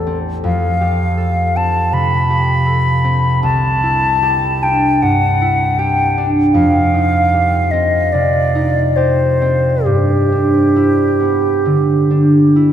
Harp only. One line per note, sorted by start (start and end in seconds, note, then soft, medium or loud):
0.00 0.47 A1 soft
0.00 0.47 E2 soft
0.00 0.80 G4 soft
0.00 1.16 A4 soft
0.07 1.55 C4 soft
0.44 3.47 F2 soft
0.81 2.29 G4 soft
1.17 2.65 A4 soft
1.56 3.03 C4 soft
1.92 3.46 C3 soft
2.30 4.21 G4 soft
2.66 3.47 A4 soft
3.04 6.94 C4 soft
3.43 6.58 C2 soft
3.83 5.40 E4 soft
4.23 5.78 G4 soft
4.62 6.16 D4 soft
5.03 6.58 G2 soft
5.42 6.58 E4 soft
5.79 7.32 G4 soft
6.18 6.58 D4 soft
6.54 9.88 F2 soft
6.94 8.54 D#4 soft
7.34 8.96 G4 soft
7.73 9.40 C4 soft
8.14 9.89 C3 soft
8.55 9.89 D#4 soft
8.97 12.73 G4 soft
9.41 9.89 C4 soft
9.86 12.73 G2 soft
10.32 12.09 D4 soft
10.76 12.55 E4 soft
11.20 12.73 B3 soft
11.66 12.73 D3 soft
12.10 12.73 D4 soft
12.56 12.73 E4 soft